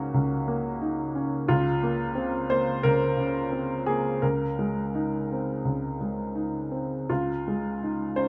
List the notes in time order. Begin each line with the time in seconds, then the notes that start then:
Already playing: C#2 A#3 C#4 D#4 F#4
0.14 C#2
0.48 A#3
0.82 D#4
1.15 C#4
1.48 C#2 F4
1.83 A#3
2.15 C4
2.50 A#3 C5
2.83 C#2 A#4
3.17 C#3
3.52 C4
3.86 A#3 G#4
4.22 C#2 A#4
4.59 G#3
4.95 D#4
5.32 C4
5.65 C#2
6.01 G#3
6.35 D#4
6.71 C4
7.10 C#2 F4
7.48 G#3
7.83 D#4
8.16 C#4 C5